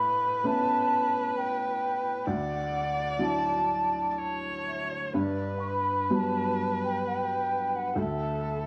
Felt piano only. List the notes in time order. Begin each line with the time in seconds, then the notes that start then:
Already playing: A2
0.44 A3 B3 C#4
2.27 D2
3.19 F#3 D4 E4
5.14 G2
6.10 F#3 G3 B3
7.95 D2